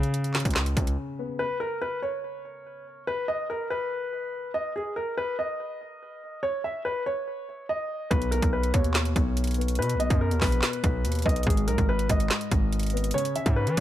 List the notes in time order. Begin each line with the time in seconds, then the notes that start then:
Already playing: C#3
0.03 closed hi-hat
0.14 closed hi-hat
0.24 closed hi-hat
0.34 C#3, snare, clap, closed hi-hat, open hi-hat
0.40 closed hi-hat
0.45 C#2, kick, closed hi-hat
0.51 closed hi-hat
0.55 snare, clap, closed hi-hat
0.66 closed hi-hat
0.77 C#2 C#3, kick, closed hi-hat
0.87 closed hi-hat
1.19 B3
1.39 B4
1.60 A#4
1.82 B4
2.02 C#5
3.07 B4
3.28 D#5
3.50 A#4
3.70 B4
4.54 D#5
4.76 G#4
4.96 A#4
5.18 B4
5.39 D#5
6.43 C#5
6.64 E5
6.85 B4
7.06 C#5
7.69 D#5
8.11 B1 B2 B4, kick, closed hi-hat
8.22 closed hi-hat
8.31 B2 A#4, closed hi-hat
8.42 B1, kick, closed hi-hat
8.53 B4
8.63 closed hi-hat
8.74 D#2 B2 C#5, kick, closed hi-hat
8.84 closed hi-hat
8.94 snare, clap, closed hi-hat
9.05 closed hi-hat
9.15 B1 B2, kick, closed hi-hat
9.37 closed hi-hat
9.44 closed hi-hat
9.47 closed hi-hat
9.51 closed hi-hat
9.54 B3, closed hi-hat
9.61 closed hi-hat
9.68 closed hi-hat
9.75 B2 B4, closed hi-hat
9.82 closed hi-hat
9.90 closed hi-hat
9.95 B1
10.00 B2 D#5, closed hi-hat
10.10 F#2, kick, closed hi-hat
10.21 A#4
10.31 D#2, closed hi-hat
10.41 A#1 B2 B4, kick, snare, clap, open hi-hat
10.52 closed hi-hat
10.62 snare, clap, closed hi-hat
10.73 closed hi-hat
10.83 B1 B2, kick, closed hi-hat
11.05 D#2, closed hi-hat
11.12 closed hi-hat
11.15 closed hi-hat
11.19 closed hi-hat
11.22 B1 B3 D#5, kick, closed hi-hat
11.29 closed hi-hat
11.36 closed hi-hat
11.43 G#1 G#2 G#4, kick, closed hi-hat
11.50 closed hi-hat
11.57 closed hi-hat
11.67 B1 G#2 A#4, closed hi-hat
11.78 G#1, kick, closed hi-hat
11.89 B4
11.99 closed hi-hat
12.09 G#1 G#2 D#5, kick, closed hi-hat
12.20 closed hi-hat
12.30 snare, clap, closed hi-hat
12.41 closed hi-hat
12.51 G#1 G#2, kick, closed hi-hat
12.72 closed hi-hat
12.79 closed hi-hat
12.83 closed hi-hat
12.86 closed hi-hat
12.90 B3, closed hi-hat
12.97 closed hi-hat
13.04 closed hi-hat
13.11 C#3 C#5, closed hi-hat
13.18 closed hi-hat
13.25 closed hi-hat
13.36 C#3 E5, closed hi-hat
13.46 G#2, kick, closed hi-hat
13.56 B4
13.67 E3, closed hi-hat